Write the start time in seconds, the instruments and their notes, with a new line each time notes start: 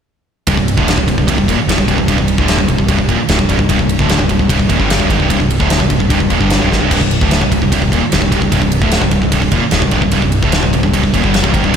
0.47 picked electric bass C1, distorted electric guitar C2 G2, kick, ride
0.57 picked electric bass C1, distorted electric guitar C2 G2, kick
0.68 ride
0.77 picked electric bass D1, distorted electric guitar D2 A2 D3, kick
0.88 snare, ride
0.98 picked electric bass C1, distorted electric guitar C2 G2, kick
1.08 picked electric bass C1, distorted electric guitar C2 G2, kick, ride
1.18 picked electric bass C1, distorted electric guitar C2 G2, kick
1.27 picked electric bass C1, distorted electric guitar C2 G2, kick, ride
1.38 picked electric bass C1, distorted electric guitar C2 G2, kick
1.48 picked electric bass D#1, distorted electric guitar D#2 A#2, kick, ride
1.58 muted picked electric bass stroke, muted distorted electric guitar stroke
1.67 picked electric bass D1, distorted electric guitar D2 A2, snare, ride
1.78 picked electric bass C1, distorted electric guitar C2 G2, kick
1.87 picked electric bass C1, distorted electric guitar C2 G2, kick, ride
1.98 picked electric bass C1, distorted electric guitar C2 G2, kick
2.07 picked electric bass C1, distorted electric guitar C2 G2, kick, ride
2.18 picked electric bass C1, distorted electric guitar C2 G2, kick
2.28 ride
2.37 picked electric bass D1, distorted electric guitar D2 A2 D3, kick
2.48 snare, ride
2.58 picked electric bass C1, distorted electric guitar C2 G2, kick
2.68 picked electric bass C1, distorted electric guitar C2 G2, kick, ride
2.77 picked electric bass C1, distorted electric guitar C2 G2, kick
2.88 picked electric bass C1, distorted electric guitar C2 G2, kick, ride
2.98 picked electric bass C1, distorted electric guitar C2 G2, kick
3.09 picked electric bass D#1, distorted electric guitar D#2 A#2, kick, ride
3.18 muted picked electric bass stroke, muted distorted electric guitar stroke
3.29 picked electric bass D1, distorted electric guitar D2 A2, snare, ride
3.39 picked electric bass C1, distorted electric guitar C2 G2, kick
3.49 picked electric bass C1, distorted electric guitar C2 G2, kick, ride
3.59 picked electric bass C1, distorted electric guitar C2 G2, kick
3.69 picked electric bass C1, distorted electric guitar C2 G2, kick, ride
3.79 picked electric bass C1, distorted electric guitar C2 G2, kick
3.89 ride
3.99 picked electric bass D1, distorted electric guitar D2 A2 D3, kick
4.09 snare, ride
4.19 picked electric bass C1, distorted electric guitar C2 G2, kick
4.29 picked electric bass C1, distorted electric guitar C2 G2, kick, ride
4.39 picked electric bass C1, distorted electric guitar C2 G2, kick
4.49 picked electric bass C1, distorted electric guitar C2 G2, kick, ride
4.59 picked electric bass C1, distorted electric guitar C2 G2, kick
4.69 picked electric bass D#1, distorted electric guitar D#2 A#2, kick, ride
4.79 picked electric bass G1, distorted electric guitar G2 D3 G3, kick
4.90 snare, ride
4.99 picked electric bass C1, distorted electric guitar C2 G2, kick
5.09 picked electric bass G#1, distorted electric guitar G#2 D#3, kick, ride
5.19 picked electric bass C1, distorted electric guitar C2 G2, kick
5.30 picked electric bass C1, distorted electric guitar C2 G2, kick, ride
5.40 picked electric bass C1, distorted electric guitar C2 G2, kick
5.50 ride
5.60 picked electric bass D1, distorted electric guitar D2 A2 D3, kick
5.70 snare, ride
5.80 picked electric bass C1, distorted electric guitar C2 G2, kick
5.90 picked electric bass C1, distorted electric guitar C2 G2, kick, ride
6.00 picked electric bass C1, distorted electric guitar C2 G2, kick
6.09 picked electric bass C1, distorted electric guitar C2 G2, kick, ride
6.19 picked electric bass C1, distorted electric guitar C2 G2, kick
6.29 picked electric bass D#1, distorted electric guitar D#2 A#2, kick, ride
6.39 picked electric bass G1, distorted electric guitar G2 D3 G3, kick
6.50 snare, ride
6.61 picked electric bass C1, distorted electric guitar C2 G2
6.70 picked electric bass G#1, distorted electric guitar G#2 D#3, snare
6.81 picked electric bass C1, distorted electric guitar C2 G2
6.91 picked electric bass C1, distorted electric guitar C2 G2, kick, crash, splash
7.01 picked electric bass C1, distorted electric guitar C2 G2, kick
7.11 ride
7.21 picked electric bass D1, distorted electric guitar D2 A2 D3, kick
7.31 snare, ride
7.41 picked electric bass C1, distorted electric guitar C2 G2, kick
7.52 picked electric bass C1, distorted electric guitar C2 G2, kick, ride
7.62 picked electric bass C1, distorted electric guitar C2 G2, kick
7.72 picked electric bass C1, distorted electric guitar C2 G2, kick, ride
7.82 picked electric bass C1, distorted electric guitar C2 G2, kick
7.92 picked electric bass D#1, distorted electric guitar D#2 A#2, kick, ride
8.04 muted distorted electric guitar stroke, muted picked electric bass stroke
8.12 picked electric bass D1, distorted electric guitar D2 A2, snare, ride
8.22 picked electric bass C1, distorted electric guitar C2 G2, kick
8.32 picked electric bass C1, distorted electric guitar C2 G2, kick, ride
8.42 picked electric bass C1, distorted electric guitar C2 G2, kick
8.52 picked electric bass C1, distorted electric guitar C2 G2, kick, ride
8.62 picked electric bass C1, distorted electric guitar C2 G2, kick
8.72 ride
8.82 picked electric bass D1, distorted electric guitar D2 A2 D3, kick
8.92 snare, ride
9.01 picked electric bass C1, distorted electric guitar C2 G2, kick
9.11 picked electric bass C1, distorted electric guitar C2 G2, kick, ride
9.22 picked electric bass C1, distorted electric guitar C2 G2, kick
9.32 picked electric bass C1, distorted electric guitar C2 G2, kick, ride
9.42 picked electric bass C1, distorted electric guitar C2 G2, kick
9.52 picked electric bass D#1, distorted electric guitar D#2 A#2, kick, ride
9.63 muted picked electric bass stroke, muted distorted electric guitar stroke
9.71 picked electric bass D1, distorted electric guitar D2 A2, snare, ride
9.82 picked electric bass C1, distorted electric guitar C2 G2, kick
9.91 picked electric bass C1, distorted electric guitar C2 G2, kick, ride
10.02 picked electric bass C1, distorted electric guitar C2 G2, kick
10.11 picked electric bass C1, distorted electric guitar C2 G2, kick, ride
10.22 picked electric bass C1, distorted electric guitar C2 G2, kick
10.32 ride
10.42 picked electric bass D1, distorted electric guitar D2 A2 D3, kick
10.52 snare, ride
10.63 picked electric bass C1, distorted electric guitar C2 G2, kick
10.73 picked electric bass C1, distorted electric guitar C2 G2, kick, ride
10.83 picked electric bass C1, distorted electric guitar C2 G2, kick
10.93 picked electric bass C1, distorted electric guitar C2 G2, kick, ride
11.04 picked electric bass C1, distorted electric guitar C2 G2, kick
11.14 picked electric bass D#1, distorted electric guitar D#2 A#2, kick, ride
11.23 picked electric bass G1, distorted electric guitar G2 D3 G3, kick
11.34 snare, ride
11.44 picked electric bass C1, distorted electric guitar C2 G2, kick
11.54 picked electric bass G#1, distorted electric guitar G#2 D#3, kick, ride
11.64 picked electric bass C1, distorted electric guitar C2 G2, kick